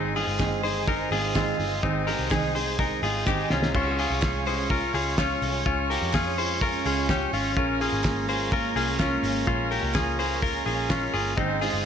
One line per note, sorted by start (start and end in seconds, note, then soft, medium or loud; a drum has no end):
0.00 0.22 G#1 loud
0.00 0.15 G#2 medium
0.00 0.15 D#3 medium
0.00 3.71 D#3 medium
0.00 0.16 G#3 loud
0.00 3.71 G#3 medium
0.00 0.16 C4 loud
0.00 0.16 C4 medium
0.00 3.71 C4 medium
0.00 0.14 D#4 medium
0.00 0.15 D#4 loud
0.00 0.13 G#4 medium
0.00 3.71 G#4 medium
0.00 3.71 C5 medium
0.00 3.71 D#5 medium
0.15 0.38 G#3 soft
0.15 0.38 C4 medium
0.15 0.39 D#4 medium
0.15 0.61 F4 medium
0.15 0.39 G#4 medium
0.15 0.61 G#4 medium
0.15 hi-hat pedal medium
0.15 open hi-hat medium
0.27 1.07 G1 loud
0.38 0.63 G#2 medium
0.38 0.63 D#3 loud
0.38 0.63 G#3 medium
0.38 0.64 C4 medium
0.38 0.63 D#4 medium
0.38 0.62 G#4 medium
0.38 kick loud
0.38 snare loud
0.38 clap medium
0.38 hi-hat pedal medium
0.38 open hi-hat medium
0.63 0.85 G#3 soft
0.63 0.87 C4 medium
0.63 0.88 D#4 medium
0.63 0.87 G#4 medium
0.63 0.88 G#4 medium
0.63 0.87 C5 medium
0.63 hi-hat pedal medium
0.63 open hi-hat medium
0.86 1.11 G#3 medium
0.86 1.12 C4 medium
0.86 1.12 D#4 medium
0.86 1.10 D#4 medium
0.86 1.09 G#4 medium
0.86 1.11 A#4 medium
0.86 kick loud
0.86 hi-hat pedal medium
0.86 open hi-hat medium
1.10 1.52 G#1 medium
1.10 1.34 G#3 medium
1.10 1.35 C4 medium
1.10 1.35 D#4 medium
1.10 1.35 F4 medium
1.10 1.35 G#4 medium
1.10 1.36 G#4 medium
1.10 hi-hat pedal medium
1.10 open hi-hat medium
1.35 1.59 G#2 loud
1.35 1.59 D#3 medium
1.35 1.59 G#3 medium
1.35 1.60 C4 medium
1.35 1.81 C4 medium
1.35 1.59 D#4 medium
1.35 1.81 F4 medium
1.35 1.58 G#4 loud
1.35 kick loud
1.35 snare loud
1.35 clap medium
1.59 1.80 G1 medium
1.59 1.83 G#3 medium
1.59 1.83 C4 medium
1.59 1.84 D#4 medium
1.59 1.83 G#4 medium
1.59 hi-hat pedal medium
1.59 open hi-hat medium
1.83 2.14 G#1 loud
1.83 2.07 G#2 medium
1.83 2.07 D#3 loud
1.83 2.08 G#3 medium
1.83 2.08 C4 medium
1.83 2.07 C4 medium
1.83 2.07 D#4 loud
1.83 2.06 D#4 medium
1.83 2.05 G#4 medium
1.83 kick loud
1.83 hi-hat pedal medium
1.83 open hi-hat medium
2.07 2.29 G#3 medium
2.07 2.30 C4 medium
2.07 2.30 D#4 medium
2.07 2.31 G4 medium
2.07 2.31 G#4 medium
2.07 2.31 A#4 medium
2.07 hi-hat pedal medium
2.07 open hi-hat medium
2.19 2.99 C2 medium
2.30 2.55 G#2 medium
2.30 2.55 D#3 medium
2.30 2.55 G#3 medium
2.30 2.55 C4 medium
2.30 2.54 D#4 loud
2.30 2.56 D#4 medium
2.30 2.55 G#4 medium
2.30 2.53 G#4 medium
2.30 kick loud
2.30 snare loud
2.30 clap medium
2.30 hi-hat pedal medium
2.30 open hi-hat medium
2.54 2.77 G#3 medium
2.54 2.78 C4 medium
2.54 2.79 D#4 medium
2.54 2.79 G#4 medium
2.54 2.79 C5 medium
2.54 hi-hat pedal medium
2.54 open hi-hat medium
2.78 3.03 G#3 medium
2.78 3.03 C4 medium
2.78 3.03 D#4 medium
2.78 3.02 D#4 medium
2.78 3.01 G#4 medium
2.78 3.03 A#4 medium
2.78 kick loud
2.78 hi-hat pedal medium
2.78 open hi-hat medium
3.02 3.43 G#1 medium
3.02 3.26 G#3 soft
3.02 3.27 C4 medium
3.02 3.27 D#4 medium
3.02 3.27 F4 medium
3.02 3.26 G#4 medium
3.02 3.27 G#4 medium
3.02 3.25 G5 medium
3.02 hi-hat pedal medium
3.02 open hi-hat medium
3.26 3.51 G#2 medium
3.26 3.51 D#3 medium
3.26 3.51 G#3 medium
3.26 3.51 C4 medium
3.26 3.51 D#4 medium
3.26 3.50 D#4 loud
3.26 3.51 G4 medium
3.26 3.49 G#4 medium
3.26 3.50 G#5 medium
3.26 kick loud
3.26 snare medium
3.26 clap medium
3.50 3.71 C2 medium
3.50 3.76 G#3 soft
3.50 3.76 C4 medium
3.50 3.75 C#4 medium
3.50 3.75 D#4 medium
3.50 3.74 F4 medium
3.50 3.75 G#4 medium
3.50 3.73 A#5 medium
3.50 snare medium
3.63 snare medium
3.74 4.05 C#2 loud
3.74 5.64 G#3 medium
3.74 7.52 C#4 medium
3.74 11.34 C#4 medium
3.74 3.99 C#4 medium
3.74 7.52 F4 medium
3.74 7.53 F4 medium
3.74 3.99 F4 medium
3.74 7.53 G#4 medium
3.74 7.53 C#5 medium
3.74 kick loud
3.74 crash medium
3.98 4.44 F4 medium
3.98 4.44 G#4 medium
3.98 hi-hat pedal medium
3.98 open hi-hat medium
4.10 4.90 C2 medium
4.22 kick loud
4.22 snare loud
4.22 clap medium
4.22 hi-hat pedal medium
4.22 open hi-hat medium
4.46 4.71 G#4 medium
4.46 4.70 C5 medium
4.46 hi-hat pedal medium
4.46 open hi-hat medium
4.70 4.94 F4 medium
4.70 4.94 A#4 medium
4.70 kick loud
4.70 hi-hat pedal medium
4.70 open hi-hat medium
4.94 5.35 C#2 medium
4.94 5.17 F4 medium
4.94 5.18 G#4 medium
4.94 hi-hat pedal medium
4.94 open hi-hat medium
5.18 5.64 C#4 medium
5.18 5.63 F4 medium
5.18 kick loud
5.18 snare loud
5.18 clap medium
5.18 hi-hat pedal medium
5.18 open hi-hat medium
5.42 5.62 C2 medium
5.42 hi-hat pedal medium
5.42 open hi-hat medium
5.65 5.96 C#2 loud
5.65 7.54 G#3 medium
5.65 5.90 C#4 medium
5.65 5.90 F4 loud
5.65 kick loud
5.65 hi-hat pedal medium
5.65 open hi-hat medium
5.90 6.14 G4 medium
5.90 6.14 A#4 medium
5.90 hi-hat pedal medium
5.90 open hi-hat medium
6.02 6.81 F2 medium
6.13 6.38 F4 medium
6.13 6.38 G#4 loud
6.13 kick loud
6.13 snare loud
6.13 clap medium
6.13 hi-hat pedal medium
6.13 open hi-hat medium
6.38 6.62 G#4 medium
6.38 6.62 C5 medium
6.38 hi-hat pedal medium
6.38 open hi-hat medium
6.61 6.86 F4 medium
6.61 6.86 A#4 medium
6.61 kick loud
6.61 hi-hat pedal medium
6.61 open hi-hat medium
6.85 7.26 C#2 loud
6.85 7.10 F4 medium
6.85 7.09 G#4 medium
6.85 hi-hat pedal medium
6.85 open hi-hat medium
7.09 7.33 C#4 medium
7.09 7.33 G4 medium
7.09 kick loud
7.09 snare loud
7.09 clap medium
7.09 hi-hat pedal medium
7.09 open hi-hat medium
7.33 7.57 G#1 medium
7.33 7.57 C#4 medium
7.33 7.56 F4 medium
7.33 hi-hat pedal medium
7.33 open hi-hat medium
7.56 7.87 A#1 loud
7.56 11.85 G#3 medium
7.56 11.34 A#3 medium
7.56 11.34 C#4 medium
7.56 7.81 C#4 medium
7.56 11.34 F4 medium
7.56 7.81 F4 loud
7.56 11.34 G#4 medium
7.56 11.34 A#4 loud
7.56 kick loud
7.56 hi-hat pedal medium
7.56 open hi-hat medium
7.81 8.26 F4 medium
7.81 8.26 G#4 medium
7.81 hi-hat pedal medium
7.81 open hi-hat medium
7.93 8.72 G#1 medium
8.04 kick loud
8.04 snare loud
8.04 clap medium
8.04 hi-hat pedal medium
8.04 open hi-hat medium
8.28 8.53 G#4 medium
8.28 8.52 C5 medium
8.28 hi-hat pedal medium
8.28 open hi-hat medium
8.52 8.76 F4 medium
8.52 8.76 A#4 medium
8.52 kick loud
8.52 hi-hat pedal medium
8.52 open hi-hat medium
8.76 9.16 C2 medium
8.76 8.99 F4 medium
8.76 8.99 G#4 medium
8.76 hi-hat pedal medium
8.76 open hi-hat medium
8.99 9.45 C#4 medium
8.99 9.45 F4 medium
8.99 kick loud
8.99 snare loud
8.99 clap medium
8.99 hi-hat pedal medium
8.99 open hi-hat medium
9.23 9.44 G#1 medium
9.23 hi-hat pedal medium
9.23 open hi-hat medium
9.47 9.78 A#1 loud
9.47 9.71 C#4 medium
9.47 9.71 F4 loud
9.47 kick medium
9.47 hi-hat pedal medium
9.47 open hi-hat medium
9.71 9.94 G4 medium
9.71 9.95 A#4 medium
9.71 hi-hat pedal medium
9.71 open hi-hat medium
9.83 10.62 C#2 loud
9.94 10.19 F4 medium
9.94 10.18 G#4 loud
9.94 kick loud
9.94 snare loud
9.94 clap medium
9.94 hi-hat pedal medium
9.94 open hi-hat medium
10.19 10.43 G#4 medium
10.19 10.42 C5 medium
10.19 hi-hat pedal medium
10.19 open hi-hat medium
10.42 10.66 F4 medium
10.42 10.66 A#4 medium
10.42 kick loud
10.42 hi-hat pedal medium
10.42 open hi-hat medium
10.66 11.07 A#1 medium
10.66 10.89 F4 medium
10.66 10.90 G#4 medium
10.66 hi-hat pedal medium
10.66 open hi-hat medium
10.90 11.14 C#4 medium
10.90 11.13 F4 medium
10.90 kick loud
10.90 snare loud
10.90 clap medium
10.90 hi-hat pedal medium
10.90 open hi-hat medium
11.14 11.34 G1 medium
11.14 11.37 F4 medium
11.14 11.37 G#4 medium
11.14 hi-hat pedal medium
11.14 open hi-hat medium
11.36 11.68 G#1 loud
11.36 11.61 G#2 medium
11.36 11.61 D#3 loud
11.36 11.85 D#3 medium
11.36 11.62 G#3 medium
11.36 11.85 C4 medium
11.36 11.62 C4 medium
11.36 11.85 D#4 medium
11.36 11.61 D#4 medium
11.36 11.85 G#4 medium
11.36 11.60 G#4 loud
11.36 11.85 C5 medium
11.36 kick loud
11.36 hi-hat pedal medium
11.36 open hi-hat medium
11.61 11.84 G#3 soft
11.61 11.85 C4 medium
11.61 11.85 D#4 medium
11.61 11.85 F4 medium
11.61 11.85 G#4 medium
11.61 hi-hat pedal medium
11.61 open hi-hat medium
11.74 11.85 G1 medium